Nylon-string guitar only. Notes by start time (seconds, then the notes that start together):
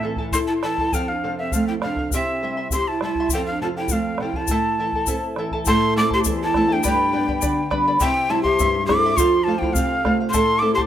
Already playing: A2
0.04 E3
0.33 E4
0.63 E3
0.93 F2
1.24 C3
1.54 A3
1.84 C3
2.14 C3
2.43 G3
2.72 G4
3.01 G3
3.32 F2
3.61 C3
3.90 A3
4.20 C3
4.49 A2
4.79 E3
5.08 C4
5.37 E3
5.67 A2
5.96 A3 C4 E4
6.26 E2
6.55 A3 C4 E4
6.85 G2
7.13 G3 B3 D4
7.44 D3
7.72 G3 B3 D4
8.02 C3
8.30 G3 C4 E4
8.60 G2
8.88 G3 C4 E4
9.18 F2
9.46 A3 C4 F4
9.75 C3
10.04 A3 C4 F4
10.34 A2
10.61 A3 C4 E4